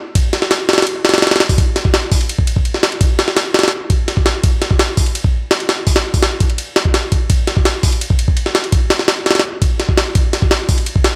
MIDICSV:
0, 0, Header, 1, 2, 480
1, 0, Start_track
1, 0, Tempo, 357143
1, 204, Time_signature, 4, 2, 24, 8
1, 14994, End_track
2, 0, Start_track
2, 0, Title_t, "Drums"
2, 205, Note_on_c, 9, 51, 97
2, 206, Note_on_c, 9, 36, 115
2, 339, Note_off_c, 9, 51, 0
2, 340, Note_off_c, 9, 36, 0
2, 444, Note_on_c, 9, 38, 57
2, 444, Note_on_c, 9, 51, 72
2, 565, Note_off_c, 9, 38, 0
2, 565, Note_on_c, 9, 38, 57
2, 578, Note_off_c, 9, 51, 0
2, 683, Note_off_c, 9, 38, 0
2, 683, Note_on_c, 9, 38, 112
2, 683, Note_on_c, 9, 51, 87
2, 817, Note_off_c, 9, 38, 0
2, 817, Note_off_c, 9, 51, 0
2, 924, Note_on_c, 9, 38, 92
2, 924, Note_on_c, 9, 51, 69
2, 984, Note_off_c, 9, 38, 0
2, 984, Note_off_c, 9, 51, 0
2, 984, Note_on_c, 9, 38, 98
2, 984, Note_on_c, 9, 51, 70
2, 1046, Note_off_c, 9, 38, 0
2, 1046, Note_off_c, 9, 51, 0
2, 1046, Note_on_c, 9, 38, 90
2, 1046, Note_on_c, 9, 51, 69
2, 1106, Note_off_c, 9, 38, 0
2, 1106, Note_off_c, 9, 51, 0
2, 1106, Note_on_c, 9, 38, 90
2, 1106, Note_on_c, 9, 51, 66
2, 1165, Note_off_c, 9, 51, 0
2, 1165, Note_on_c, 9, 51, 94
2, 1241, Note_off_c, 9, 38, 0
2, 1299, Note_off_c, 9, 51, 0
2, 1405, Note_on_c, 9, 38, 91
2, 1405, Note_on_c, 9, 51, 69
2, 1466, Note_off_c, 9, 38, 0
2, 1466, Note_off_c, 9, 51, 0
2, 1466, Note_on_c, 9, 38, 90
2, 1466, Note_on_c, 9, 51, 70
2, 1526, Note_off_c, 9, 38, 0
2, 1526, Note_off_c, 9, 51, 0
2, 1526, Note_on_c, 9, 38, 93
2, 1526, Note_on_c, 9, 51, 70
2, 1585, Note_off_c, 9, 38, 0
2, 1585, Note_off_c, 9, 51, 0
2, 1585, Note_on_c, 9, 38, 88
2, 1585, Note_on_c, 9, 51, 71
2, 1643, Note_off_c, 9, 38, 0
2, 1643, Note_off_c, 9, 51, 0
2, 1643, Note_on_c, 9, 38, 90
2, 1643, Note_on_c, 9, 51, 69
2, 1705, Note_off_c, 9, 38, 0
2, 1705, Note_off_c, 9, 51, 0
2, 1705, Note_on_c, 9, 38, 88
2, 1705, Note_on_c, 9, 51, 67
2, 1764, Note_off_c, 9, 38, 0
2, 1764, Note_off_c, 9, 51, 0
2, 1764, Note_on_c, 9, 38, 89
2, 1764, Note_on_c, 9, 51, 66
2, 1824, Note_off_c, 9, 38, 0
2, 1824, Note_off_c, 9, 51, 0
2, 1824, Note_on_c, 9, 38, 89
2, 1824, Note_on_c, 9, 51, 66
2, 1885, Note_off_c, 9, 38, 0
2, 1885, Note_off_c, 9, 51, 0
2, 1885, Note_on_c, 9, 38, 102
2, 1885, Note_on_c, 9, 51, 75
2, 2007, Note_on_c, 9, 36, 89
2, 2008, Note_on_c, 9, 46, 74
2, 2019, Note_off_c, 9, 38, 0
2, 2019, Note_off_c, 9, 51, 0
2, 2125, Note_off_c, 9, 36, 0
2, 2125, Note_on_c, 9, 36, 117
2, 2125, Note_on_c, 9, 51, 89
2, 2142, Note_off_c, 9, 46, 0
2, 2259, Note_off_c, 9, 36, 0
2, 2260, Note_off_c, 9, 51, 0
2, 2364, Note_on_c, 9, 38, 52
2, 2364, Note_on_c, 9, 51, 67
2, 2487, Note_on_c, 9, 36, 96
2, 2499, Note_off_c, 9, 38, 0
2, 2499, Note_off_c, 9, 51, 0
2, 2604, Note_on_c, 9, 38, 116
2, 2604, Note_on_c, 9, 51, 90
2, 2621, Note_off_c, 9, 36, 0
2, 2738, Note_off_c, 9, 38, 0
2, 2738, Note_off_c, 9, 51, 0
2, 2844, Note_on_c, 9, 36, 103
2, 2844, Note_on_c, 9, 46, 86
2, 2967, Note_on_c, 9, 51, 44
2, 2978, Note_off_c, 9, 36, 0
2, 2978, Note_off_c, 9, 46, 0
2, 3083, Note_off_c, 9, 51, 0
2, 3083, Note_on_c, 9, 51, 97
2, 3206, Note_on_c, 9, 36, 94
2, 3218, Note_off_c, 9, 51, 0
2, 3322, Note_on_c, 9, 51, 80
2, 3340, Note_off_c, 9, 36, 0
2, 3445, Note_on_c, 9, 36, 87
2, 3457, Note_off_c, 9, 51, 0
2, 3563, Note_on_c, 9, 51, 64
2, 3579, Note_off_c, 9, 36, 0
2, 3687, Note_on_c, 9, 38, 46
2, 3698, Note_off_c, 9, 51, 0
2, 3804, Note_off_c, 9, 38, 0
2, 3804, Note_on_c, 9, 38, 102
2, 3804, Note_on_c, 9, 51, 74
2, 3925, Note_off_c, 9, 51, 0
2, 3925, Note_on_c, 9, 51, 43
2, 3938, Note_off_c, 9, 38, 0
2, 4041, Note_off_c, 9, 51, 0
2, 4041, Note_on_c, 9, 51, 95
2, 4042, Note_on_c, 9, 36, 120
2, 4175, Note_off_c, 9, 51, 0
2, 4176, Note_off_c, 9, 36, 0
2, 4284, Note_on_c, 9, 38, 111
2, 4284, Note_on_c, 9, 51, 78
2, 4406, Note_off_c, 9, 38, 0
2, 4406, Note_on_c, 9, 38, 59
2, 4419, Note_off_c, 9, 51, 0
2, 4523, Note_off_c, 9, 38, 0
2, 4523, Note_on_c, 9, 38, 115
2, 4523, Note_on_c, 9, 51, 89
2, 4657, Note_off_c, 9, 38, 0
2, 4657, Note_off_c, 9, 51, 0
2, 4763, Note_on_c, 9, 38, 96
2, 4763, Note_on_c, 9, 51, 75
2, 4823, Note_off_c, 9, 38, 0
2, 4823, Note_off_c, 9, 51, 0
2, 4823, Note_on_c, 9, 38, 99
2, 4823, Note_on_c, 9, 51, 72
2, 4884, Note_off_c, 9, 38, 0
2, 4884, Note_off_c, 9, 51, 0
2, 4884, Note_on_c, 9, 38, 90
2, 4884, Note_on_c, 9, 51, 67
2, 4943, Note_off_c, 9, 38, 0
2, 4943, Note_off_c, 9, 51, 0
2, 4943, Note_on_c, 9, 38, 89
2, 4943, Note_on_c, 9, 51, 68
2, 5077, Note_off_c, 9, 38, 0
2, 5077, Note_off_c, 9, 51, 0
2, 5241, Note_on_c, 9, 36, 101
2, 5241, Note_on_c, 9, 51, 79
2, 5375, Note_off_c, 9, 51, 0
2, 5376, Note_off_c, 9, 36, 0
2, 5483, Note_on_c, 9, 38, 43
2, 5483, Note_on_c, 9, 51, 63
2, 5604, Note_on_c, 9, 36, 90
2, 5617, Note_off_c, 9, 38, 0
2, 5617, Note_off_c, 9, 51, 0
2, 5722, Note_on_c, 9, 38, 99
2, 5722, Note_on_c, 9, 51, 75
2, 5738, Note_off_c, 9, 36, 0
2, 5856, Note_off_c, 9, 38, 0
2, 5856, Note_off_c, 9, 51, 0
2, 5960, Note_on_c, 9, 51, 93
2, 5962, Note_on_c, 9, 36, 119
2, 6094, Note_off_c, 9, 51, 0
2, 6097, Note_off_c, 9, 36, 0
2, 6204, Note_on_c, 9, 38, 51
2, 6204, Note_on_c, 9, 51, 71
2, 6326, Note_on_c, 9, 36, 96
2, 6338, Note_off_c, 9, 38, 0
2, 6338, Note_off_c, 9, 51, 0
2, 6442, Note_on_c, 9, 38, 123
2, 6442, Note_on_c, 9, 51, 93
2, 6460, Note_off_c, 9, 36, 0
2, 6577, Note_off_c, 9, 38, 0
2, 6577, Note_off_c, 9, 51, 0
2, 6683, Note_on_c, 9, 46, 86
2, 6684, Note_on_c, 9, 36, 99
2, 6805, Note_on_c, 9, 51, 44
2, 6817, Note_off_c, 9, 46, 0
2, 6818, Note_off_c, 9, 36, 0
2, 6923, Note_off_c, 9, 51, 0
2, 6923, Note_on_c, 9, 51, 90
2, 7048, Note_on_c, 9, 36, 94
2, 7057, Note_off_c, 9, 51, 0
2, 7182, Note_off_c, 9, 36, 0
2, 7404, Note_on_c, 9, 38, 114
2, 7404, Note_on_c, 9, 51, 93
2, 7530, Note_off_c, 9, 51, 0
2, 7530, Note_on_c, 9, 51, 45
2, 7539, Note_off_c, 9, 38, 0
2, 7647, Note_off_c, 9, 51, 0
2, 7647, Note_on_c, 9, 38, 102
2, 7647, Note_on_c, 9, 51, 79
2, 7781, Note_off_c, 9, 38, 0
2, 7781, Note_off_c, 9, 51, 0
2, 7886, Note_on_c, 9, 46, 78
2, 7887, Note_on_c, 9, 36, 93
2, 8008, Note_on_c, 9, 38, 103
2, 8008, Note_on_c, 9, 51, 75
2, 8020, Note_off_c, 9, 46, 0
2, 8021, Note_off_c, 9, 36, 0
2, 8143, Note_off_c, 9, 38, 0
2, 8143, Note_off_c, 9, 51, 0
2, 8250, Note_on_c, 9, 36, 87
2, 8250, Note_on_c, 9, 46, 74
2, 8366, Note_on_c, 9, 38, 114
2, 8366, Note_on_c, 9, 51, 89
2, 8384, Note_off_c, 9, 36, 0
2, 8384, Note_off_c, 9, 46, 0
2, 8501, Note_off_c, 9, 38, 0
2, 8501, Note_off_c, 9, 51, 0
2, 8606, Note_on_c, 9, 51, 70
2, 8607, Note_on_c, 9, 36, 98
2, 8730, Note_off_c, 9, 51, 0
2, 8730, Note_on_c, 9, 51, 43
2, 8742, Note_off_c, 9, 36, 0
2, 8846, Note_off_c, 9, 51, 0
2, 8846, Note_on_c, 9, 51, 89
2, 8980, Note_off_c, 9, 51, 0
2, 9086, Note_on_c, 9, 38, 106
2, 9086, Note_on_c, 9, 51, 82
2, 9210, Note_on_c, 9, 36, 83
2, 9220, Note_off_c, 9, 38, 0
2, 9220, Note_off_c, 9, 51, 0
2, 9327, Note_on_c, 9, 38, 102
2, 9327, Note_on_c, 9, 51, 77
2, 9344, Note_off_c, 9, 36, 0
2, 9462, Note_off_c, 9, 38, 0
2, 9462, Note_off_c, 9, 51, 0
2, 9568, Note_on_c, 9, 51, 80
2, 9569, Note_on_c, 9, 36, 92
2, 9702, Note_off_c, 9, 51, 0
2, 9703, Note_off_c, 9, 36, 0
2, 9807, Note_on_c, 9, 51, 94
2, 9808, Note_on_c, 9, 36, 112
2, 9941, Note_off_c, 9, 51, 0
2, 9943, Note_off_c, 9, 36, 0
2, 10046, Note_on_c, 9, 38, 52
2, 10046, Note_on_c, 9, 51, 74
2, 10170, Note_on_c, 9, 36, 98
2, 10180, Note_off_c, 9, 38, 0
2, 10180, Note_off_c, 9, 51, 0
2, 10286, Note_on_c, 9, 38, 114
2, 10286, Note_on_c, 9, 51, 94
2, 10304, Note_off_c, 9, 36, 0
2, 10420, Note_off_c, 9, 38, 0
2, 10420, Note_off_c, 9, 51, 0
2, 10526, Note_on_c, 9, 46, 85
2, 10527, Note_on_c, 9, 36, 97
2, 10649, Note_on_c, 9, 51, 44
2, 10661, Note_off_c, 9, 46, 0
2, 10662, Note_off_c, 9, 36, 0
2, 10769, Note_off_c, 9, 51, 0
2, 10769, Note_on_c, 9, 51, 93
2, 10889, Note_on_c, 9, 36, 98
2, 10904, Note_off_c, 9, 51, 0
2, 11005, Note_on_c, 9, 51, 85
2, 11024, Note_off_c, 9, 36, 0
2, 11128, Note_on_c, 9, 36, 83
2, 11139, Note_off_c, 9, 51, 0
2, 11244, Note_on_c, 9, 51, 60
2, 11262, Note_off_c, 9, 36, 0
2, 11371, Note_on_c, 9, 38, 46
2, 11379, Note_off_c, 9, 51, 0
2, 11488, Note_off_c, 9, 38, 0
2, 11488, Note_on_c, 9, 38, 103
2, 11488, Note_on_c, 9, 51, 77
2, 11609, Note_off_c, 9, 51, 0
2, 11609, Note_on_c, 9, 51, 40
2, 11623, Note_off_c, 9, 38, 0
2, 11725, Note_off_c, 9, 51, 0
2, 11725, Note_on_c, 9, 36, 109
2, 11725, Note_on_c, 9, 51, 96
2, 11859, Note_off_c, 9, 51, 0
2, 11860, Note_off_c, 9, 36, 0
2, 11965, Note_on_c, 9, 38, 109
2, 11965, Note_on_c, 9, 51, 84
2, 12088, Note_off_c, 9, 38, 0
2, 12088, Note_on_c, 9, 38, 60
2, 12099, Note_off_c, 9, 51, 0
2, 12204, Note_off_c, 9, 38, 0
2, 12204, Note_on_c, 9, 38, 118
2, 12204, Note_on_c, 9, 51, 90
2, 12338, Note_off_c, 9, 38, 0
2, 12338, Note_off_c, 9, 51, 0
2, 12447, Note_on_c, 9, 38, 91
2, 12447, Note_on_c, 9, 51, 72
2, 12507, Note_off_c, 9, 38, 0
2, 12507, Note_off_c, 9, 51, 0
2, 12507, Note_on_c, 9, 38, 94
2, 12507, Note_on_c, 9, 51, 74
2, 12568, Note_off_c, 9, 38, 0
2, 12568, Note_off_c, 9, 51, 0
2, 12568, Note_on_c, 9, 38, 89
2, 12568, Note_on_c, 9, 51, 66
2, 12627, Note_off_c, 9, 38, 0
2, 12627, Note_off_c, 9, 51, 0
2, 12627, Note_on_c, 9, 38, 90
2, 12627, Note_on_c, 9, 51, 66
2, 12761, Note_off_c, 9, 38, 0
2, 12761, Note_off_c, 9, 51, 0
2, 12925, Note_on_c, 9, 36, 103
2, 12925, Note_on_c, 9, 51, 82
2, 13059, Note_off_c, 9, 36, 0
2, 13059, Note_off_c, 9, 51, 0
2, 13165, Note_on_c, 9, 38, 47
2, 13165, Note_on_c, 9, 51, 59
2, 13287, Note_on_c, 9, 36, 85
2, 13299, Note_off_c, 9, 38, 0
2, 13299, Note_off_c, 9, 51, 0
2, 13405, Note_on_c, 9, 38, 104
2, 13405, Note_on_c, 9, 51, 75
2, 13421, Note_off_c, 9, 36, 0
2, 13540, Note_off_c, 9, 38, 0
2, 13540, Note_off_c, 9, 51, 0
2, 13643, Note_on_c, 9, 51, 94
2, 13645, Note_on_c, 9, 36, 119
2, 13778, Note_off_c, 9, 51, 0
2, 13779, Note_off_c, 9, 36, 0
2, 13886, Note_on_c, 9, 38, 52
2, 13886, Note_on_c, 9, 51, 74
2, 14007, Note_on_c, 9, 36, 100
2, 14020, Note_off_c, 9, 38, 0
2, 14020, Note_off_c, 9, 51, 0
2, 14125, Note_on_c, 9, 38, 120
2, 14125, Note_on_c, 9, 51, 92
2, 14141, Note_off_c, 9, 36, 0
2, 14259, Note_off_c, 9, 38, 0
2, 14259, Note_off_c, 9, 51, 0
2, 14363, Note_on_c, 9, 46, 83
2, 14365, Note_on_c, 9, 36, 104
2, 14485, Note_on_c, 9, 51, 44
2, 14497, Note_off_c, 9, 46, 0
2, 14499, Note_off_c, 9, 36, 0
2, 14601, Note_off_c, 9, 51, 0
2, 14601, Note_on_c, 9, 51, 93
2, 14726, Note_on_c, 9, 36, 101
2, 14736, Note_off_c, 9, 51, 0
2, 14843, Note_on_c, 9, 38, 111
2, 14843, Note_on_c, 9, 51, 81
2, 14860, Note_off_c, 9, 36, 0
2, 14978, Note_off_c, 9, 38, 0
2, 14978, Note_off_c, 9, 51, 0
2, 14994, End_track
0, 0, End_of_file